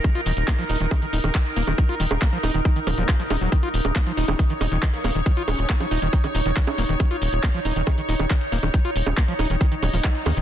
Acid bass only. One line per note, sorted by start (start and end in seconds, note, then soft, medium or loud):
0.04 0.10 D#3 medium
0.15 0.21 F4 loud
0.26 0.32 D#3 medium
0.48 0.53 A#3 medium
0.59 0.64 F3 medium
0.70 0.78 D#4 medium
0.80 0.86 D#3 medium
0.91 0.97 D#3 medium
1.02 1.05 D#3 medium
1.13 1.19 D#4 medium
1.24 1.29 D#3 medium
1.56 1.62 A#3 medium
1.67 1.73 D#3 medium
1.78 1.84 D#3 medium
1.89 1.95 F4 loud
2.00 2.05 D#3 medium
2.22 2.27 A#3 medium
2.33 2.38 F3 medium
2.43 2.52 D#4 medium
2.54 2.60 D#3 medium
2.65 2.71 D#3 medium
2.76 2.79 D#3 medium
2.87 2.90 F3 loud
2.98 3.03 F3 loud
3.09 3.14 F4 loud
3.20 3.23 F3 medium
3.30 3.36 D#4 medium
3.41 3.50 F#3 medium
3.52 3.58 D#3 medium
3.63 3.69 F4 loud
3.96 4.01 A#3 medium
4.07 4.12 F3 medium
4.17 4.26 D#4 medium
4.28 4.34 D#3 medium
4.39 4.45 D#3 medium
4.50 4.53 D#3 medium
4.61 4.66 D#4 medium
4.72 4.77 D#3 medium
4.83 4.88 D#3 medium
5.04 5.10 A#3 medium
5.15 5.21 D#3 medium
5.26 5.32 D#3 medium
5.37 5.42 F4 loud
5.70 5.75 A#3 medium
5.80 5.86 F3 medium
5.91 6.00 D#4 medium
6.02 6.08 D#3 medium
6.13 6.19 D#3 medium
6.24 6.27 D#3 medium
6.35 6.40 D#4 medium
6.46 6.51 D#3 medium
6.57 6.62 D#3 medium
6.78 6.84 A#3 medium
6.89 6.95 D#3 medium
7.00 7.05 D#3 medium
7.11 7.16 F4 loud
7.43 7.49 A#3 medium
7.54 7.60 F3 medium
7.65 7.73 D#4 medium
7.76 7.82 D#3 medium
7.87 7.92 D#3 medium
7.98 8.01 D#3 medium
8.09 8.14 D#4 medium
8.20 8.25 D#3 medium
8.30 8.36 D#3 medium
8.52 8.58 A#3 medium
8.63 8.69 D#3 medium
8.74 8.79 D#3 medium
8.85 8.90 F4 loud
9.17 9.23 A#3 medium
9.28 9.34 F3 medium
9.39 9.47 D#4 medium
9.50 9.55 D#3 medium
9.61 9.66 D#3 medium
9.72 9.75 D#3 medium
9.83 9.86 F#3 medium
9.93 9.97 F3 medium
10.04 10.10 F#3 loud
10.26 10.32 D#3 medium
10.37 10.42 D#3 medium